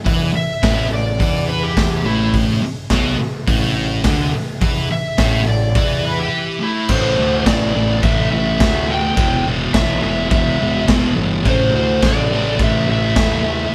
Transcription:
0.05 picked electric bass E2, distorted electric guitar E3, kick, open hi-hat
0.33 electric slide guitar E5, muted distorted electric guitar stroke, muted picked electric bass stroke
0.63 picked electric bass A1, distorted electric guitar A2, kick, snare, open hi-hat
0.91 picked electric bass A1, distorted electric guitar A2, electric slide guitar D5
1.19 picked electric bass E2, distorted electric guitar E3, kick, open hi-hat
1.49 electric slide guitar B4
1.63 electric slide guitar G4
1.77 kick, snare, open hi-hat
2.04 picked electric bass A1, distorted electric guitar A2, electric slide guitar E4
2.33 picked electric bass A1, distorted electric guitar A2, kick, open hi-hat
2.62 muted picked electric bass stroke, muted distorted electric guitar stroke
2.90 picked electric bass B1, distorted electric guitar B2, kick, snare, open hi-hat
3.19 muted picked electric bass stroke, muted distorted electric guitar stroke
3.47 picked electric bass A1, distorted electric guitar A2, kick, open hi-hat
4.04 picked electric bass D2, distorted electric guitar D3, kick, snare, open hi-hat
4.33 muted picked electric bass stroke, muted distorted electric guitar stroke
4.61 picked electric bass E2, distorted electric guitar E3, kick, open hi-hat
4.90 electric slide guitar E5, muted distorted electric guitar stroke, muted picked electric bass stroke
5.18 picked electric bass A1, distorted electric guitar A2, kick, snare, open hi-hat
5.46 picked electric bass A1, distorted electric guitar A2, electric slide guitar D5
5.75 picked electric bass E2, distorted electric guitar E3, kick, open hi-hat
6.06 electric slide guitar B4
6.19 electric slide guitar G4
6.60 distorted electric guitar A2, electric slide guitar E4
6.89 picked electric bass A1, distorted electric guitar A2 E3 A3, electric slide guitar C5, kick, crash
7.18 picked electric bass D2, distorted electric guitar A2 E3 A3
7.40 electric slide guitar C5
7.46 picked electric bass A1, distorted electric guitar A2 E3 A3, electric slide guitar D5, kick, snare, crash
7.74 picked electric bass A1, distorted electric guitar A2 E3 A3
8.03 picked electric bass A1, distorted electric guitar A2 E3 A3, electric slide guitar E5, kick, crash
8.31 picked electric bass A1, distorted electric guitar A2 E3 A3, electric slide guitar E5
8.59 picked electric bass D2, distorted electric guitar A2 E3 A3, kick, snare, crash
8.88 distorted electric guitar A2 E3 A3, electric slide guitar G5
9.15 picked electric bass E1, distorted electric guitar E2 B2 E3, kick, crash
9.45 distorted electric guitar E2 B2 E3
9.73 picked electric bass B1, distorted electric guitar E2 B2 E3, electric slide guitar E5, kick, snare, crash
10.02 picked electric bass E1, distorted electric guitar E2 B2 E3, electric slide guitar E5
10.31 picked electric bass E1, distorted electric guitar E2 B2 E3, electric slide guitar E5, kick, crash
10.58 picked electric bass E1, distorted electric guitar E2 B2 E3
10.87 picked electric bass E1, distorted electric guitar E2 B2 E3, kick, snare, crash
11.15 picked electric bass G1, distorted electric guitar E2 B2 E3
11.43 picked electric bass A1, distorted electric guitar A2 E3 A3, kick, crash
11.48 electric slide guitar C5
11.72 picked electric bass D2, distorted electric guitar A2 E3 A3
11.76 electric slide guitar C5
12.01 picked electric bass A1, distorted electric guitar A2 E3 A3, kick, snare, crash
12.06 electric slide guitar D5
12.30 picked electric bass A1, distorted electric guitar A2 E3 A3
12.59 picked electric bass A1, distorted electric guitar A2 E3 A3, kick, crash
12.63 electric slide guitar E5
12.87 picked electric bass A1, distorted electric guitar A2 E3 A3, electric slide guitar E5
13.16 picked electric bass D#2, distorted electric guitar A2 E3 A3, kick, snare, crash
13.44 distorted electric guitar A2 E3 A3

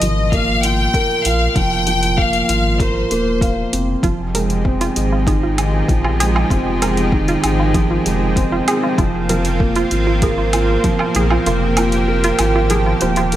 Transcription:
Already playing: felt piano F3 F4 A#4, violin section D#5
0.02 sub bass G#1, felt piano F3, closed hi-hat
0.32 felt piano A#3, violin section F5, kick, closed hi-hat
0.63 felt piano F4, violin section G5, closed hi-hat
0.94 felt piano A#4, kick, closed hi-hat
1.24 sub bass A#1, felt piano F4, violin section F5, closed hi-hat
1.54 sub bass F1, felt piano F3, violin section G5, kick, closed hi-hat
1.87 felt piano F3, closed hi-hat
2.03 closed hi-hat
2.18 felt piano A#3, violin section F5, kick
2.33 closed hi-hat
2.49 sub bass G#1, felt piano F4, closed hi-hat
2.79 felt piano A#4, violin section C5, kick, closed hi-hat
3.11 sub bass D#1, felt piano A#3, closed hi-hat
3.41 felt piano F5, kick, closed hi-hat
3.73 sub bass F1, felt piano C4, closed hi-hat
4.03 sub bass F1, felt piano F3, analog synth pad F3 C4 D#4 G4 G#4, synth arpeggio sound F4, kick, closed hi-hat
4.34 felt piano G#3, synth arpeggio sound A#4, closed hi-hat
4.50 closed hi-hat
4.65 felt piano C4, kick
4.81 synth arpeggio sound F4, closed hi-hat
4.96 sub bass G#1, felt piano G#3, closed hi-hat
5.12 synth arpeggio sound F4
5.27 felt piano D#3, synth arpeggio sound G#4, kick, closed hi-hat
5.43 synth arpeggio sound F4
5.58 felt piano D#3, closed hi-hat, low woodblock
5.89 sub bass A#1, felt piano F3, kick, closed hi-hat
6.04 synth arpeggio sound F4, low woodblock
6.20 felt piano G#3, synth arpeggio sound G#4, closed hi-hat
6.35 synth arpeggio sound F4, low woodblock
6.50 sub bass F1, felt piano C4, synth arpeggio sound F4, kick, closed hi-hat
6.82 felt piano G#3, synth arpeggio sound A#4, closed hi-hat, low woodblock
6.97 closed hi-hat
7.12 felt piano D#3, kick
7.28 synth arpeggio sound F4, closed hi-hat
7.44 sub bass G#1, felt piano D#3, closed hi-hat, low woodblock
7.60 synth arpeggio sound F4
7.74 felt piano F3, synth arpeggio sound G#4, kick, closed hi-hat
7.91 synth arpeggio sound F4
8.06 sub bass F1, felt piano G#3, closed hi-hat
8.36 felt piano C4, kick, closed hi-hat
8.52 synth arpeggio sound F4
8.68 felt piano G#3, synth arpeggio sound G#4, closed hi-hat, low woodblock
8.84 synth arpeggio sound F4
8.98 sub bass F1, felt piano F3, analog synth pad A#3 F4, synth arpeggio sound F4, kick, closed hi-hat
9.29 felt piano F3, synth arpeggio sound A#4, closed hi-hat
9.45 closed hi-hat
9.60 felt piano A#3, kick
9.76 synth arpeggio sound F4, closed hi-hat
9.91 sub bass G#1, felt piano F4, closed hi-hat
10.07 synth arpeggio sound F4
10.22 synth arpeggio sound G#4, felt piano A#4, kick, closed hi-hat
10.38 synth arpeggio sound F4
10.53 felt piano F4, closed hi-hat, low woodblock
10.84 felt piano F3, kick, closed hi-hat
10.99 synth arpeggio sound F4, low woodblock
11.15 sub bass A#1, felt piano F3, synth arpeggio sound G#4, closed hi-hat
11.30 synth arpeggio sound F4, low woodblock
11.46 sub bass F1, felt piano A#3, synth arpeggio sound F4, analog synth pad G4, closed hi-hat
11.77 felt piano F4, synth arpeggio sound A#4, closed hi-hat, low woodblock
11.92 closed hi-hat
12.08 felt piano A#4
12.24 synth arpeggio sound F4, closed hi-hat
12.39 sub bass G#1, felt piano F4, closed hi-hat, low woodblock
12.56 synth arpeggio sound F4
12.70 felt piano F3, synth arpeggio sound G#4, closed hi-hat
12.86 synth arpeggio sound F4
13.01 sub bass D#1, felt piano F3, synth arpeggio sound C5, closed hi-hat
13.16 synth arpeggio sound F4, closed hi-hat
13.32 felt piano A#3, closed hi-hat

